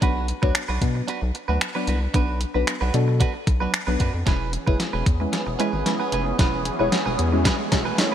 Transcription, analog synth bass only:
0, 0, Header, 1, 2, 480
1, 0, Start_track
1, 0, Tempo, 530973
1, 18, Time_signature, 4, 2, 24, 8
1, 7364, End_track
2, 0, Start_track
2, 0, Title_t, "Analog synth bass"
2, 0, Program_c, 0, 38
2, 18, Note_on_c, 0, 35, 103
2, 296, Note_off_c, 0, 35, 0
2, 387, Note_on_c, 0, 38, 83
2, 472, Note_off_c, 0, 38, 0
2, 624, Note_on_c, 0, 35, 93
2, 710, Note_off_c, 0, 35, 0
2, 737, Note_on_c, 0, 47, 99
2, 920, Note_off_c, 0, 47, 0
2, 1106, Note_on_c, 0, 35, 91
2, 1191, Note_off_c, 0, 35, 0
2, 1346, Note_on_c, 0, 38, 92
2, 1431, Note_off_c, 0, 38, 0
2, 1698, Note_on_c, 0, 36, 88
2, 1880, Note_off_c, 0, 36, 0
2, 1937, Note_on_c, 0, 35, 104
2, 2216, Note_off_c, 0, 35, 0
2, 2306, Note_on_c, 0, 35, 77
2, 2391, Note_off_c, 0, 35, 0
2, 2546, Note_on_c, 0, 35, 89
2, 2631, Note_off_c, 0, 35, 0
2, 2659, Note_on_c, 0, 47, 98
2, 2937, Note_off_c, 0, 47, 0
2, 3138, Note_on_c, 0, 35, 90
2, 3320, Note_off_c, 0, 35, 0
2, 3504, Note_on_c, 0, 35, 89
2, 3590, Note_off_c, 0, 35, 0
2, 3617, Note_on_c, 0, 42, 86
2, 3714, Note_off_c, 0, 42, 0
2, 3745, Note_on_c, 0, 41, 92
2, 3830, Note_off_c, 0, 41, 0
2, 3857, Note_on_c, 0, 28, 104
2, 4136, Note_off_c, 0, 28, 0
2, 4225, Note_on_c, 0, 30, 86
2, 4311, Note_off_c, 0, 30, 0
2, 4465, Note_on_c, 0, 28, 97
2, 4551, Note_off_c, 0, 28, 0
2, 4578, Note_on_c, 0, 40, 99
2, 4760, Note_off_c, 0, 40, 0
2, 4946, Note_on_c, 0, 28, 82
2, 5031, Note_off_c, 0, 28, 0
2, 5183, Note_on_c, 0, 32, 92
2, 5269, Note_off_c, 0, 32, 0
2, 5537, Note_on_c, 0, 29, 89
2, 5719, Note_off_c, 0, 29, 0
2, 5777, Note_on_c, 0, 28, 107
2, 6056, Note_off_c, 0, 28, 0
2, 6144, Note_on_c, 0, 28, 84
2, 6230, Note_off_c, 0, 28, 0
2, 6385, Note_on_c, 0, 28, 92
2, 6470, Note_off_c, 0, 28, 0
2, 6498, Note_on_c, 0, 40, 100
2, 6777, Note_off_c, 0, 40, 0
2, 6979, Note_on_c, 0, 28, 89
2, 7160, Note_off_c, 0, 28, 0
2, 7364, End_track
0, 0, End_of_file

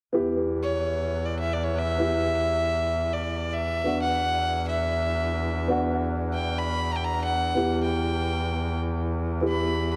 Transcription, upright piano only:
0, 0, Header, 1, 2, 480
1, 0, Start_track
1, 0, Key_signature, 1, "minor"
1, 0, Tempo, 500000
1, 9564, End_track
2, 0, Start_track
2, 0, Title_t, "Upright piano"
2, 0, Program_c, 0, 0
2, 122, Note_on_c, 0, 59, 61
2, 136, Note_on_c, 0, 64, 50
2, 140, Note_on_c, 0, 67, 66
2, 1883, Note_off_c, 0, 59, 0
2, 1890, Note_off_c, 0, 64, 0
2, 1893, Note_off_c, 0, 67, 0
2, 1903, Note_on_c, 0, 59, 46
2, 1916, Note_on_c, 0, 64, 48
2, 1924, Note_on_c, 0, 67, 50
2, 3663, Note_off_c, 0, 59, 0
2, 3670, Note_off_c, 0, 64, 0
2, 3674, Note_off_c, 0, 67, 0
2, 3688, Note_on_c, 0, 59, 49
2, 3699, Note_on_c, 0, 62, 45
2, 3705, Note_on_c, 0, 66, 57
2, 5439, Note_off_c, 0, 59, 0
2, 5449, Note_off_c, 0, 62, 0
2, 5452, Note_off_c, 0, 66, 0
2, 5454, Note_on_c, 0, 59, 71
2, 5466, Note_on_c, 0, 62, 65
2, 5473, Note_on_c, 0, 66, 74
2, 7213, Note_off_c, 0, 59, 0
2, 7220, Note_off_c, 0, 62, 0
2, 7223, Note_off_c, 0, 66, 0
2, 7247, Note_on_c, 0, 59, 57
2, 7259, Note_on_c, 0, 64, 51
2, 7270, Note_on_c, 0, 67, 56
2, 8996, Note_off_c, 0, 59, 0
2, 9002, Note_off_c, 0, 64, 0
2, 9008, Note_off_c, 0, 67, 0
2, 9037, Note_on_c, 0, 59, 60
2, 9046, Note_on_c, 0, 64, 51
2, 9055, Note_on_c, 0, 67, 56
2, 9564, Note_off_c, 0, 59, 0
2, 9564, Note_off_c, 0, 64, 0
2, 9564, Note_off_c, 0, 67, 0
2, 9564, End_track
0, 0, End_of_file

